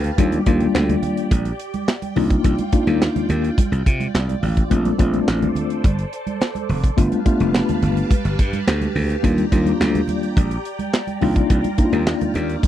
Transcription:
Already playing: G4 B4 F5 A5
0.04 closed hi-hat
0.18 D#2 G3 A#3 D4 F4 D5 G5, kick, closed hi-hat
0.32 closed hi-hat, high conga
0.46 D#2 G3 A#3 D4 F4, kick, closed hi-hat
0.60 closed hi-hat, high conga
0.75 D2, snare, clap
0.89 closed hi-hat, muted conga, high conga, low conga
1.03 closed hi-hat, low conga
1.17 closed hi-hat
1.31 A#1, kick, closed hi-hat, muted conga, high conga
1.45 closed hi-hat, muted conga
1.60 closed hi-hat
1.74 closed hi-hat, high conga
1.88 snare, clap, muted conga
2.02 closed hi-hat, high conga
2.16 C2 A#3 D4 D#4 F4 D5, open hi-hat, low conga
2.30 kick, closed hi-hat
2.44 C2, kick, closed hi-hat, muted conga
2.59 closed hi-hat, muted conga, high conga
2.73 A#3 D4 D#4 F4, kick, closed hi-hat
2.87 D#2, closed hi-hat, high conga
3.02 snare, clap, muted conga
3.16 closed hi-hat, muted conga, high conga, low conga
3.29 D#2, closed hi-hat, low conga
3.44 closed hi-hat
3.58 kick, closed hi-hat, muted conga, high conga
3.72 C2, closed hi-hat, muted conga
3.86 C3, kick, closed hi-hat
4.00 closed hi-hat, high conga
4.14 C2, snare, clap
4.29 closed hi-hat, high conga
4.42 A1, open hi-hat, low conga
4.57 kick, closed hi-hat
4.70 A#1 A3 C4 D4 F4 A4 C5, kick, closed hi-hat, muted conga
4.85 closed hi-hat, muted conga, high conga
4.98 A#1 A3 C4 D4 F4, kick, closed hi-hat
5.13 closed hi-hat, high conga
5.28 A1, snare, clap
5.42 closed hi-hat, muted conga, high conga, low conga
5.55 closed hi-hat, low conga
5.70 closed hi-hat
5.84 G1, kick, closed hi-hat, high conga
5.99 closed hi-hat, muted conga
6.13 closed hi-hat
6.27 closed hi-hat, high conga
6.41 snare, clap, muted conga
6.55 closed hi-hat, muted conga, high conga
6.69 F1, open hi-hat, low conga
6.84 kick, closed hi-hat
6.97 G1 A3 B3 D4 F4 G4 B4 F5 A5, kick, closed hi-hat, muted conga
7.12 closed hi-hat, muted conga, high conga
7.25 A3 B3 D4 F4, kick, closed hi-hat
7.40 F1, closed hi-hat, high conga
7.55 snare, clap, muted conga
7.69 closed hi-hat, muted conga, high conga, low conga
7.82 G1, closed hi-hat, low conga
7.97 closed hi-hat
8.11 kick, closed hi-hat, muted conga, high conga
8.25 G1, closed hi-hat
8.39 G2, kick, closed hi-hat
8.53 closed hi-hat, high conga
8.67 D2, snare, clap
8.81 closed hi-hat, muted conga, high conga
8.95 D2, open hi-hat, low conga
9.10 closed hi-hat
9.23 D#2 G3 A#3 D4 F4 D5 G5 A#5, kick, closed hi-hat, muted conga
9.38 closed hi-hat, muted conga, high conga
9.52 D#2 G3 A#3 D4 F4, kick, closed hi-hat
9.66 closed hi-hat, high conga
9.80 D2, snare, clap
9.95 closed hi-hat, high conga, low conga
10.08 closed hi-hat, low conga
10.23 closed hi-hat
10.37 A#1, kick, closed hi-hat, muted conga, high conga
10.51 closed hi-hat, muted conga
10.65 closed hi-hat
10.79 closed hi-hat, high conga
10.94 snare, clap
11.07 closed hi-hat, high conga
11.21 C2 A#3 D4 D#4 F4 A#5, open hi-hat, low conga
11.36 kick, closed hi-hat
11.50 C2, kick, closed hi-hat, muted conga
11.64 closed hi-hat, muted conga, high conga
11.78 A#3 D4 D#4 E4, kick, closed hi-hat
11.85 F4
11.92 D#2, closed hi-hat, high conga
12.07 snare, clap, muted conga
12.21 closed hi-hat, muted conga, high conga, low conga
12.34 D#2, closed hi-hat, low conga
12.49 closed hi-hat
12.63 kick, closed hi-hat, high conga

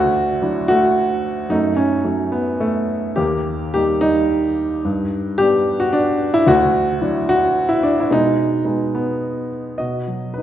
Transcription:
Already playing: D2 A3 F#4
0.42 F#3 D4 E4
0.68 A3 F#4
1.49 F#2 A3 D#4
1.76 C#4
2.04 F#3 A3 C#4
2.32 B3
2.60 A3
3.16 D#2 A#3 G4
3.74 G3 A#3 D#4 G4
4.01 G3 D#4
4.85 G2
5.38 G3 B3 D4 G4
5.80 F#4
5.93 D4
6.34 E4
6.47 D2 A3 F#4
7.01 F#3 D4 E4
7.29 F#4
7.69 E4
7.83 D4
8.00 E4
8.10 B2 G#3 D#4
8.65 G#3 B3 D#4
8.95 B3
9.78 B2 F#4 D#5
10.08 F#3
10.34 D#4 B4

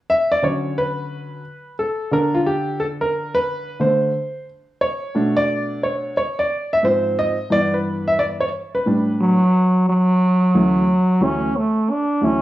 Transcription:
0.10 E5
0.32 D5
0.42 D3 F#3 C#4 C#5
0.78 B4
1.79 A4
2.11 D3 D4 A4 A#4
2.34 F4
2.46 G4
2.80 A4
3.01 A#4
3.35 B4
3.80 D3 A3 D4 C5
4.81 C#5
5.15 B2 A3 D4
5.37 D5
5.83 C#5
6.17 C#5
6.39 D5
6.73 E5
6.83 G#2 F3 C4 C5
7.18 D#5
7.50 G2 E3 B3 D5
7.74 B4
8.08 E5
8.19 D5
8.40 C#5
8.75 B4
8.86 A2 G3 D4
9.21 F#3
9.88 F#3
10.54 D2 E3 F#3 A3 C#4
11.20 D2 E3 F#3 A3 C#4
11.57 A3
11.91 D4
12.21 D2 E3 F#3 A3 C#4 E4

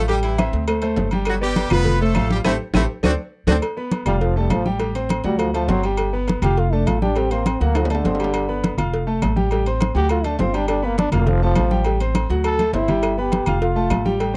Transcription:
Already playing: A1
0.08 G3 G4 G5, cowbell, high conga, low agogo
0.23 E3 E4, high conga, low agogo
0.38 C4 C5 E5, cowbell, high conga, low timbale, low agogo, claves
0.53 D2, cowbell, high conga
0.68 A3 A4 C5, cowbell, high conga, low agogo, claves
0.82 A3 A4 C5, high conga, low agogo
0.96 G1, cowbell, high conga, low timbale
1.11 G3 G4 G5, high conga, low agogo
1.25 F#3 F#4, cowbell, high conga, low agogo, claves
1.41 G3 B3 G4 B4 D5, high conga
1.56 cowbell, high conga, low timbale, low agogo
1.70 F1 F3 B3 F4 B4 F5, cowbell, high conga, low conga, low agogo, claves
1.85 cowbell, high conga, low conga
2.01 A3 A4 C5, high conga
2.15 A1 F3 F4 F5, cowbell, high conga, low timbale, low agogo, claves
2.30 G3 G4, high conga
2.45 A1 A3 C4 E4 G4 A4 C5, cowbell, high conga, high timbale, claves
2.74 A1 A3 C4 E4 G4 A4 C5, cowbell, high conga, high timbale, claves
3.03 D2 C4 D4 F#4 A4 C5 D5, cowbell, high conga, high timbale, claves
3.47 D2 C4 D4 F#4 A4 C5 D5, cowbell, high conga, high timbale, claves
3.62 cowbell, high conga, low agogo
3.77 B3 B4 B5, high conga
3.91 cowbell, high conga, low timbale, low agogo
4.06 F1 G3 F4 F5 F6, cowbell, high conga, low conga, low agogo
4.21 F3, cowbell, high conga
4.36 G3 A3 A4 A5, high conga
4.50 A1 F3, cowbell, high conga, low timbale, low agogo
4.65 G3 G4 G5, high conga
4.79 G3 G4 G5, cowbell, high conga, low agogo
4.95 C4 C5 C6, high conga, low agogo
5.09 cowbell, high conga, low timbale, low agogo
5.24 D2 F#3 G3 F#4 F#5, cowbell, high conga
5.39 F3, cowbell, high conga, low agogo
5.54 F3 A3 A4 A5, high conga, low agogo
5.68 G1 F#3 C4 C5 C6, cowbell, high conga, low timbale
5.83 G3 G4 G5, low agogo
5.97 cowbell, high conga, low agogo
6.13 B3 B4 B5, high conga
6.28 cowbell, high conga, low timbale, low agogo
6.42 F1 F4 G4 F5 F6, cowbell, high conga, low conga, low agogo
6.57 F4, cowbell, high conga
6.73 A3 D4 A4 A5, high conga
6.86 A1 F4, cowbell, high conga, low timbale, low agogo
7.02 G3 D4 G4 G5, high conga
7.16 G3 C4 G4 G5, cowbell, high conga, low agogo
7.31 A#3 C4 C5 C6, high conga, low agogo
7.46 C4, cowbell, high conga, low timbale, low agogo
7.61 D2 F#3 A#3 F#4 F#5, cowbell, high conga
7.75 F3, cowbell, high conga, high timbale, low agogo
7.85 low timbale
7.90 D3 A3 A4 A5, high conga, low agogo
7.95 low timbale
8.05 G1 C4 C5 C6, cowbell, high conga, low timbale
8.15 low timbale
8.20 G3 G4 G5, low agogo
8.24 low timbale
8.34 cowbell, high conga, low agogo
8.49 B3 B4 B5, high conga
8.64 cowbell, high conga, low timbale, low agogo
8.77 F1 F4 F5 F6, cowbell, high conga, low conga, low agogo
8.93 cowbell, high conga
9.07 A3 A4 A5, high conga
9.22 A1, cowbell, high conga, low timbale, low agogo
9.36 G3 G4 G5, high conga
9.51 G3 G4 G5, cowbell, high conga, low agogo
9.66 C4 C5 C6, high conga, low agogo
9.81 cowbell, high conga, low timbale, low agogo
9.95 D2 F#3 F#4 G4 F#5, cowbell, high conga
10.09 F4, cowbell, high conga, low agogo
10.24 A3 D4 A4 A5, high conga, low agogo
10.39 G1 C4 F4 C5 C6, cowbell, high conga, low timbale
10.54 G3 D4 G4 G5, low agogo
10.68 D4, cowbell, high conga, low agogo
10.82 A#3 B3 B4 B5, high conga
10.98 D4, cowbell, high conga, low timbale, low agogo
11.12 F1 A#3 F4 F5 F6, cowbell, high conga, low conga, low agogo
11.27 F3, cowbell, high conga, low conga
11.42 F3 A3 A4 A5, high conga
11.56 A1, cowbell, high conga, low timbale, low agogo
11.71 G3 G4 G5, high conga
11.84 G3 G4 G5, cowbell, high conga, low agogo
12.00 C4 C5 C6, high conga, low agogo
12.15 cowbell, high conga, low timbale, low agogo
12.30 D2 F#3 F#4 F#5, cowbell, high conga
12.44 A4, cowbell, high conga, low agogo
12.59 A3 A4 A5, high conga, low agogo
12.73 G1 C4 E4 C5 C6, cowbell, low timbale
12.88 G3 G4 G5, low conga, low agogo
13.03 cowbell, high conga, low agogo, claves
13.18 B3 G4 B4 B5, high conga
13.32 cowbell, high conga, low timbale, low agogo
13.46 F1 F4 F5 F6, cowbell, high conga, low conga, low agogo, claves
13.62 F4, cowbell, high conga
13.76 A3 A4 A5, high conga
13.90 A1, cowbell, high conga, low timbale, low agogo, claves
14.05 G3 G4 G5, high conga
14.19 G3 G4 G5, cowbell, high conga, low agogo
14.33 C4 C5

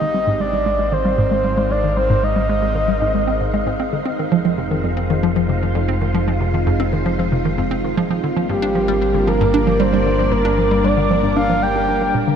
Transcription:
Already playing: G#1 G#3 C4 D#4 C5 D#5 F5 G5
0.02 D#3
0.14 G3
0.27 G#2
0.40 G#3 D5
0.53 G3
0.66 G#3
0.70 A#4
0.79 G#3
0.92 D#3 C5
1.05 G3
1.18 G#2
1.31 G#3
1.44 G3
1.57 G#3
1.71 G#3 D5
1.84 D#3
1.97 G3 C5
2.10 G#2
2.23 G#3 D#5
2.36 G3
2.49 G#3
2.62 G#3
2.75 D#3
2.88 G3
3.01 G#2
3.15 G#3
3.27 C4
3.41 G#2
3.54 G#3
3.67 G#2
3.80 C4
3.93 D3
4.06 F1 C4
4.19 D#3
4.32 F3
4.45 F3
4.55 C3 F4
4.71 D#3
4.84 F2
4.97 C4
5.10 D#3
5.23 F3
5.36 F3
5.49 C3
5.62 D#3
5.75 F2
5.88 C4
6.02 D#3
6.14 F3
6.28 F3
6.41 C3
6.54 D#3
6.67 F2
6.80 C4
6.93 D#3
7.06 F3
7.19 F3
7.32 C3
7.45 D#3
7.58 F2
7.71 C4
7.84 D#3
7.97 F3
8.10 F3
8.23 G1 D3 G3 A#3
8.37 F3
8.49 G2 G4
8.59 D4 A#4
8.75 F3
8.88 G3
9.01 G3
9.10 D5
9.14 D3
9.27 F3 A#4
9.41 G2
9.54 D4
9.67 F3
9.80 G3 C5
9.93 G3
10.06 D3
10.19 F3
10.32 G2 A#4
10.45 D4
10.58 F3
10.71 G3
10.84 G3 D5
10.97 D3
11.10 F3
11.23 G2
11.36 D4 F5
11.50 F3
11.62 G3 G5
11.76 D4
11.89 D4
12.01 G3
12.15 A#2
12.28 D3

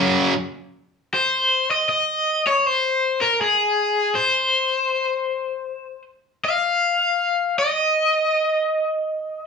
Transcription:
Already playing: F#2 C#3 F#3 F#5
1.14 C5
1.71 D#5
1.89 D#5
2.47 C#5
2.66 C5
3.21 A#4
3.41 G#4
4.15 C5
6.45 F5
7.59 D#5

